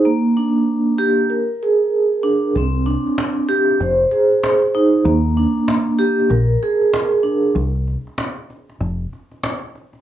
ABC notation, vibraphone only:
X:1
M:4/4
L:1/8
Q:"Swing 16ths" 1/4=96
K:Bbmix
V:1 name="Vibraphone"
B, D2 G B A2 D | C D2 G c A2 E | B, D2 G B A2 D | z8 |]